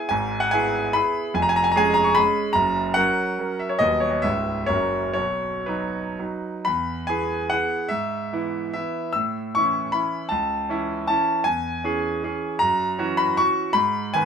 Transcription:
grand piano
0.09 G#1 G#2 G#5
0.40 F#5
0.51 B3 E4 G#4 G#5
0.93 B3 E4 G#4 B5
1.34 F1 F2 G#5
1.42 A#5
1.49 G#5
1.56 A#5
1.64 G#5
1.72 G#3 A#5
1.76 C#4 G#4 G#5
1.94 A#5
2.04 C#6
2.15 G#3 C#4 G#4 B5
2.53 F#1 F#2 A#5
2.94 F#3 C#4 A#4 F#5
3.39 F#3 C#4 A#4
3.59 E5
3.69 C#5
3.79 D#1 D#2 F#3 B3 B4 D#5
4.00 C#5
4.11 D#5
4.22 C#1 C#2 G#3 C#4 B4 E5
4.66 F#1 F#2 F#3 C#4 A#4 C#5
5.13 B1 B2 C#5
5.66 F#3 D#4 B4
6.19 F#3 D#4 B4
6.65 E2 B5
7.07 E3 B3 G#4 G#5
7.50 E3 B3 G#4 F#5
7.89 G#2 E5
8.33 E3 B3 E4
8.73 E3 B3 E4 E5
9.13 A2 E6
9.55 E3 C#4 E4 C#6
9.92 E3 C#4 E4 B5
10.29 C#2 A5
10.69 E3 C#4 E4
11.07 E3 C#4 E4 A5
11.44 E2 G#5
11.84 E3 C#4 G#4
12.23 E3 C#4 G#4
12.59 F#2 A#5
12.99 E3 C#4 F#4
13.17 B5
13.37 E3 C#4 F#4 C#6
13.73 G#2 B5
14.14 D#3 B3 B4 G#5

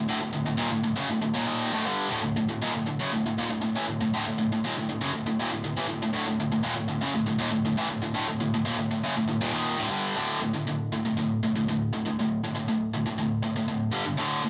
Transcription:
distorted electric guitar
0.08 D2 A2
0.20 D2 A2
0.33 D2 A2
0.46 D2 A2
0.57 D#2 A#2
0.71 D2 A2
0.83 D2 A2
0.96 F#2 C#3
1.09 D2 A2
1.21 D2 A2
1.34 D#2 A#2
1.46 D#2 A#2 D#3
1.72 D2 A2
1.86 G2 D3 G3
2.10 D2 A2
2.22 D2 A2
2.36 D2 A2
2.49 D2 A2
2.62 D#2 A#2
2.75 D2 A2
2.87 D2 A2
3.00 F#2 C#3
3.13 D2 A2
3.26 D2 A2
3.38 D#2 A#2
3.50 D2 A2
3.62 D2 A2
3.76 A2 E3
3.87 D2 A2
4.01 D2 A2
4.14 D2 A2
4.27 D2 A2
4.38 D2 A2
4.52 D2 A2
4.65 D#2 A#2
4.78 D2 A2
4.89 D2 A2
5.01 F#2 C#3
5.13 D2 A2
5.26 D2 A2
5.39 D#2 A#2
5.52 D2 A2
5.64 D2 A2
5.77 A2 E3
5.88 D2 A2
6.02 D2 A2
6.13 D2 A2
6.27 D2 A2
6.40 D2 A2
6.52 D2 A2
6.63 D#2 A#2
6.76 D2 A2
6.88 D2 A2
7.01 F#2 C#3
7.15 D2 A2
7.26 D2 A2
7.39 D#2 A#2
7.51 D2 A2
7.65 D2 A2
7.77 A2 E3
7.90 D2 A2
8.02 D2 A2
8.14 D2 A2
8.28 D2 A2
8.40 D2 A2
8.54 D2 A2
8.65 D#2 A#2
8.78 D2 A2
8.91 D2 A2
9.03 F#2 C#3
9.16 D2 A2
9.28 D2 A2
9.41 D#2 A#2
9.53 D#2 A#2 D#3
9.78 D2 A2
9.89 G2 D3 G3
10.16 D2 A2 D3
10.41 D2 A2
10.54 D2 A2
10.67 D2 A2
10.92 D2 A2
11.05 D2 A2
11.17 D2 A2
11.43 D2 A2
11.56 D2 A2
11.68 D2 A2
11.93 D2 A2
12.05 D2 A2
12.19 D2 A2
12.44 D2 A2
12.55 D2 A2
12.68 D2 A2
12.94 D2 A2
13.06 D2 A2
13.18 D2 A2
13.43 D2 A2
13.56 D2 A2
13.68 D2 A2
13.92 G2 D3 G3
14.05 G2 D3
14.18 D2 A2 D3
14.44 D2 A2

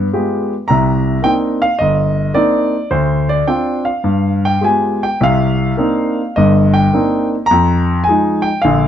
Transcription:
grand piano
0.13 G#3 B3 F4 G4
0.68 C2 C3 A#5
1.22 A#3 C4 D4 D#4 G5
1.62 F5
1.79 G1 D#5
2.34 A#3 C4 D4 D#4 D5
2.91 D2 C5
3.29 D5
3.48 C4 D4 F4 G5
3.85 F5
4.04 G2
4.45 G5
4.61 G#3 B3 F4 G4 G#5
5.03 G5
5.21 C2 C3 F5
5.77 A#3 C4 D4 D#4
6.36 G1 G2 D#5
6.74 G5
6.93 A#3 C4 D4 D#4
7.46 A#5
7.51 F2
8.04 F3 G#5
8.08 G#3 D#4
8.42 G5
8.62 A#1 D3 F5

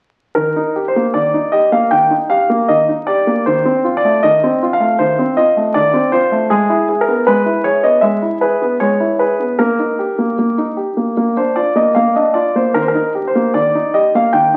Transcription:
grand piano
0.35 D#3 A#4
0.56 D#4
0.76 G4
0.88 C5
0.96 A#3
1.14 D#3 D5
1.34 D#4
1.52 G4 D#5
1.72 A#3 F5
1.91 D#3 G5
2.10 D#4
2.30 G4 F5
2.50 A#3
2.68 D#3 D#5
2.89 D#4
3.07 G4 D5
3.27 A#3
3.46 D#3 C5
3.65 C4
3.84 F4
3.97 D5
4.05 A3
4.23 D#3 D#5
4.44 C4
4.63 F4
4.73 F5
4.80 A3
4.99 D#3 C5
5.19 C4
5.37 F4 D#5
5.57 A3
5.74 D#3 D5
5.94 C4
6.12 F4 C5
6.32 A3
6.50 G#3 G#4
6.70 E4
6.89 G#4
7.01 A#4
7.08 B3
7.27 G#3 B4
7.46 E4
7.64 G#4 C#5
7.83 B3 D#5
8.01 G#3 E5
8.22 E4
8.41 G#4 B4
8.62 B3
8.80 G#3 C#5
9.00 E4
9.19 G#4 B4
9.40 B3
9.59 A#3 A#4
9.79 D#4
9.99 G4
10.18 A#3
10.39 A#3
10.58 D#4
10.77 G4
10.97 A#3
11.17 A#3
11.37 D4 C5
11.56 F4 D5
11.75 A#3 D#5
11.95 A#3 F5
12.15 D4 D#5
12.34 F4 D5
12.55 A#3 C5
12.74 D#3 A#4
12.82 C5
12.88 A#4
12.95 D#4
13.15 G4
13.27 C5
13.35 A#3
13.54 D#3 D5
13.75 D#4
13.94 G4 D#5
14.15 A#3 F5
14.33 D#3 G5

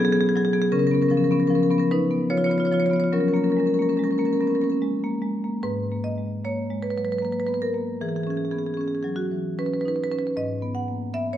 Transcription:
marimba
Already playing: B2 F#3
0.05 B3 G#4
0.13 B3 G#4
0.21 G#4
0.29 G#4
0.35 F#3 G#4
0.45 G#4
0.53 B3 G#4
0.62 G#4
0.72 C#3 C#4 A#4
0.79 C#4 A#4
0.87 C#4 A#4
0.91 B3 C#4 A#4
1.02 C#4 A#4
1.08 F3 C#4 A#4
1.17 C#4 A#4
1.24 C#4 A#4
1.31 B3 C#4 A#4
1.39 C#4 A#4
1.47 F3 C#4 A#4
1.55 C#4 A#4
1.63 C#4 A#4
1.70 B3 C#4 A#4
1.78 C#4 A#4
1.91 C#4 D#4 B4
2.11 B3
2.30 F3 F4 C#5
2.37 F4 C#5
2.44 F4 C#5
2.50 B3 F4 C#5
2.58 F4 C#5
2.65 F4 C#5
2.71 F3 F4 C#5
2.80 F4 C#5
2.86 F4 C#5
2.91 B3 C#5
2.96 F4 C#5
3.04 F4
3.12 F#3 C#4 A#4
3.21 C#4 A#4
3.28 C#4 A#4
3.34 A#3 C#4 A#4
3.44 C#4 A#4
3.50 C#4 A#4
3.57 G#3 C#4 A#4
3.66 C#4 A#4
3.74 C#4 A#4
3.79 A#3 C#4 A#4
3.89 C#4 A#4
3.97 G#3 C#4 A#4
4.04 C#4 A#4
4.11 C#4 A#4
4.18 A#3 C#4 A#4
4.25 C#4 A#4
4.33 C#4 A#4
4.40 B3 C#4 A#4
4.47 C#4 A#4
4.55 C#4 A#4
4.62 A#3 C#4 A#4
4.70 C#4 A#4
4.82 G#3
5.04 A#3
5.22 G#3
5.44 A#3
5.63 G#2 B4
5.92 A#3
6.04 D#5
6.18 G#3
6.45 A#3 C#5
6.70 G#3
6.83 B4
6.90 B4
6.97 F#3 B4
7.05 B4
7.12 B4
7.18 B4
7.22 A#3 B4
7.32 B4
7.40 B4
7.47 B3 B4
7.54 B4
7.62 A#4
7.74 A#3
8.01 E3 G#4
8.09 G#4
8.16 G#4
8.23 C#4 G#4
8.30 G#4
8.37 G#4
8.45 G#4
8.51 B3 G#4
8.59 G#4
8.67 G#4
8.74 C#4 G#4
8.81 G#4
8.88 G#4
8.95 G#4
9.03 F#3 G#4
9.16 F#4
9.31 E3
9.59 C#4 B4
9.66 B4
9.74 B4
9.81 B4
9.85 D#4 B4
9.96 B4
10.04 B4
10.12 C#4 B4
10.19 B4
10.27 B4
10.36 G#2 D#5
10.62 B3
10.75 F#5
10.88 A#3
11.14 B3 E5
11.33 C#5

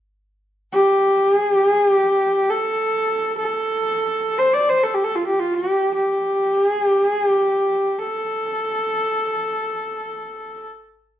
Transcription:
horsehead fiddle
0.73 G4
1.35 G#4
1.51 G4
1.69 G#4
1.86 G4
2.50 A4
3.38 A4
4.38 C5
4.54 D5
4.69 C5
4.83 A4
4.94 G4
5.04 A4
5.16 F4
5.27 G4
5.40 F4
5.54 G4
5.95 G4
6.66 G#4
6.85 G4
7.06 G#4
7.25 G4
7.98 A4

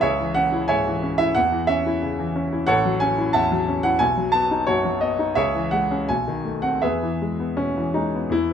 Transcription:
grand piano
0.01 C#2 G#4 C#5 E5
0.20 E3
0.35 C#4 F#5
0.52 E4
0.68 G#2 C#5 E5 G#5
0.86 E3
1.03 C#4
1.18 E4 E5
1.35 E2 F#5
1.52 E3
1.67 C#4 E5
1.86 E4
2.02 C#3
2.19 E3
2.36 C#4
2.53 E4
2.67 A1 A4 C#5 F#5
2.85 F#3
3.00 C#4 G#5
3.18 E4
3.33 E2 E5 F#5 A5
3.52 F#3
3.68 C#4
3.83 E4 F#5
3.99 B1 G#5
4.17 F#3
4.32 B3 A5
4.51 D#4
4.67 F#2 F#4 C#5
4.85 F#3
5.01 B3 D#5
5.19 D#4
5.35 C#2 G#4 C#5 E5
5.55 E3
5.71 G#3 F#5
5.91 C#4
6.09 B1 G#5
6.28 D#3
6.45 A3
6.62 C4 F#5
6.82 E2 G#4 B4 E5
7.03 E3
7.21 G#3
7.40 B3
7.57 B2 C#4
7.77 E3
7.94 G#3 D#4
8.15 B3
8.30 E2 E4

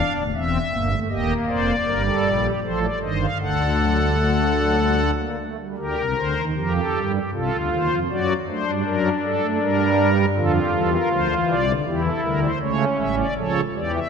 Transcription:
pipe organ
Already playing: D4 F5
0.15 D1 D2
0.34 E1 E2 C4 E5
0.72 G1 G2 A#3
0.91 A3
1.10 D#1 D#2 A#3 G4 D#5
1.48 F1 F2 C5 D5
1.86 G1 G2 G3 A#4
2.05 A4
2.24 A#1 A#2
2.44 G4
2.62 A1 A2 F3 A4 C5
2.82 D5
3.02 G1 G2 D#3 C5 D#5
3.21 F5
3.40 D2 D3 A4 F#5
3.80 F#3
3.99 G3
4.19 A3
4.59 F#3
4.79 G3
4.99 A3
5.19 A#3
5.39 A3
5.58 G3
5.77 D2 D3 G4 A#4
5.97 C2 C3
6.17 D2 D3 C5
6.36 D#2 D#3
6.56 F2 F3 G4 A#4
6.75 A4
6.95 G2 G3
7.14 G4
7.33 C2 C3 F4 A4
7.52 D2 D3
7.71 D#2 D#3 C5
7.90 F2 F3
8.09 F#2 F#3 F#4 D5
8.47 A3 D4 C5
8.66 G2 G3
8.85 F#2 F#3 A#4
9.23 G2 G3 A4
9.42 A3
9.61 G2 G3 A#4
10.36 F2 D3 F3 F4 A4
10.55 G4
10.73 E2 E3 G3 A4
10.92 A#4
11.11 D2 D3 F3 C5
11.30 E3
11.49 C2 C3 D5
11.68 D3
11.86 E2 E3 E4 G4
12.04 A4
12.23 D2 D3 G3 A#4
12.42 C5
12.61 C#2 C#3 A3 C#4 C#5
12.98 A1 A2 G3 E5
13.17 D5
13.37 C#2 C#3 F3 A4 C#5
13.75 E2 E3 G4 D5
13.94 E5

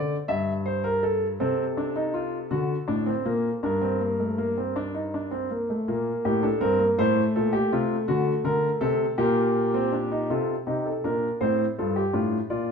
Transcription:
grand piano
Already playing: D3 D5
0.28 G2 E5
0.66 C5
0.84 A#4
1.03 A4
1.40 C3 C4 A4
1.77 D4
1.96 D#4
2.14 F4
2.51 D3 F#4
2.88 A2 D4
3.06 C4
3.25 A#2 A#3
3.63 G2 D4 A#4
3.82 C4
4.01 A#3
4.20 A3
4.38 A#3
4.58 C4
4.76 D4
4.94 D#4
5.14 D4
5.31 C4
5.51 A#3
5.70 A3
5.88 A#2 A#3
6.25 A2 G4
6.43 D4 A4
6.61 G2 C4 A#4
6.79 A#3
6.98 A2 A3 C5
7.36 A#2 A4
7.53 G4
7.72 C3 F4
8.08 D3 F#4
8.44 D3 A#4
8.81 C3 A4
9.18 A#2 A#3 G4
9.74 C4
9.92 D4
10.11 D#4
10.30 C3 F4 A4
10.67 C3 D#4 G4
10.85 A4
11.04 A#2 D4 A#4
11.41 A2 C4 C5
11.78 G2 F4 A4
11.96 G4
12.13 A2 D4 F4
12.50 A#2 F4 D5

